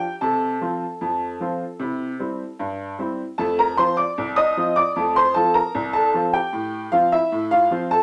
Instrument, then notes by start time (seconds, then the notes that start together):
upright piano
Already playing: G4 G5
0.21 C3 A4 A5
0.61 F3 C4 F4
1.01 F2
1.40 F3 C4 F4
1.80 C3 E4
2.19 G3 C4 E4
2.59 G2
2.99 G3 C4 E4
3.38 F2 A3 A4 A5
3.59 A#4 A#5
3.77 F3 C4 F4 C5 C6
3.97 D5 D6
4.18 C2
4.36 D#5 D#6
4.57 F3 C4 F4
4.76 D5 D6
4.96 F2 A3
5.16 C5 C6
5.34 F3 C4 F4 A4 A5
5.54 A#4 A#5
5.75 C2
5.93 A4 A5
6.14 F3 C4 F4
6.33 G4 G5
6.53 A2
6.92 F3 C4 F4 F5
7.12 E4 E5
7.32 A2
7.51 F4 F5
7.71 F3 C4 F4
7.91 A4 A5